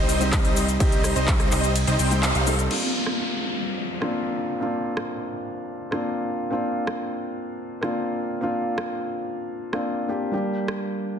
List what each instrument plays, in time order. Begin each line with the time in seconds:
Already playing: analog synth bass C2, grand piano G3 C4 D#4 G4, supersaw synth G3 C4 D#4 C5 D#5
0.09 open hi-hat, shaker
0.20 grand piano G3 C4 D#4 G4, closed hi-hat, shaker
0.32 kick, clap, closed hi-hat, ride, shaker
0.45 analog synth bass C2, supersaw synth G3 C4 D#4 C5 D#5, closed hi-hat, shaker
0.57 open hi-hat, shaker
0.68 closed hi-hat, shaker
0.79 grand piano G3 C4 D#4 G4, supersaw synth G3 C4 D#4 C5 D#5, kick, closed hi-hat, ride, shaker
0.92 closed hi-hat, shaker
1.04 cross-stick, open hi-hat, shaker
1.16 analog synth bass C2, supersaw synth G3 C4 D#4 C5 D#5, closed hi-hat, shaker
1.28 kick, clap, closed hi-hat, ride, shaker
1.40 cross-stick, closed hi-hat, shaker
1.51 analog synth bass C2, supersaw synth G3 C4 D#4 C5 D#5, clap, open hi-hat, shaker
1.64 closed hi-hat, shaker
1.76 closed hi-hat, ride, shaker
1.87 analog synth bass C2, supersaw synth G3 C4 D#4 C5 D#5, closed hi-hat, shaker
1.99 analog synth bass C2, supersaw synth G3 C4 D#4 C5 G5, open hi-hat, shaker
2.11 grand piano G3 C4 D#4 G4, closed hi-hat, shaker
2.23 clap, closed hi-hat, ride, shaker
2.35 analog synth bass C2, supersaw synth G3 C4 D#4 C5 F5, closed hi-hat, shaker
2.46 grand piano G3 C4 D#4 A4, open hi-hat, shaker
2.59 closed hi-hat, shaker
2.70 grand piano A#3 C4 D4 F4, crash, downlifter
3.06 cross-stick
4.01 grand piano A#3 C4 D4 F4, cross-stick
4.60 grand piano A#3 C4 D4 F4
4.97 cross-stick
5.91 grand piano A#3 C4 D4 F4, cross-stick
6.50 grand piano A#3 C4 D4 F4
6.87 cross-stick
7.81 grand piano A#3 C4 D4 F4, cross-stick
8.41 grand piano A#3 C4 D4 F4
8.78 cross-stick
9.73 grand piano A#3 C4 D4 F4, cross-stick
10.08 grand piano A#3 C4 D4 G4
10.31 grand piano G3 A#3 D4 G4
10.68 cross-stick